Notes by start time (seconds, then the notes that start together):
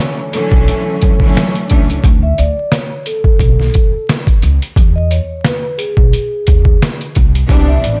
Already playing: D3 E3 F#3 A3 C#4
0.00 C#5, closed hi-hat
0.32 D3 E3 F#3 A3 C#4 A4, closed hi-hat
0.52 B1, kick
0.68 closed hi-hat
1.02 C#2, kick, closed hi-hat
1.18 D3 E3 F#3 A3 C#4, kick
1.37 snare, closed hi-hat
1.55 closed hi-hat
1.69 C#2 E3 F#3 A3 C#4 D4, kick, closed hi-hat
1.90 closed hi-hat
2.04 D2, kick, closed hi-hat
2.23 E5
2.38 D2 D5, closed hi-hat
2.72 C#5, snare, closed hi-hat
3.06 A4, closed hi-hat
3.24 kick
3.39 B1, kick, closed hi-hat
3.60 snare
3.74 kick, closed hi-hat
4.09 snare, closed hi-hat
4.27 kick, closed hi-hat
4.42 C#2, closed hi-hat
4.62 closed hi-hat
4.76 E2, kick, closed hi-hat
4.95 D#5
5.11 C#5, closed hi-hat
5.45 B4, snare, closed hi-hat
5.78 G#4, closed hi-hat
5.97 B1, kick
6.13 closed hi-hat
6.47 D#2, kick, closed hi-hat
6.65 kick
6.82 snare, closed hi-hat
7.01 closed hi-hat
7.15 C2, kick, closed hi-hat
7.35 closed hi-hat
7.48 C2 E3 G3 B3 C4 D4, kick, closed hi-hat
7.68 E5
7.83 A1 D5, closed hi-hat